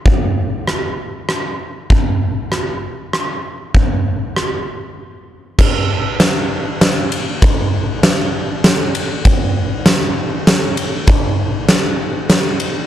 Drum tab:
CC |------|------|------|x-----|
RD |------|------|------|--x-xx|
SD |--r-r-|--r-r-|--r---|--o-o-|
BD |o-----|o-----|o-----|o-----|

CC |------|------|------|
RD |x-x-xx|x-x-xx|x-x-xx|
SD |--o-o-|--o-o-|--o-o-|
BD |o-----|o-----|o-----|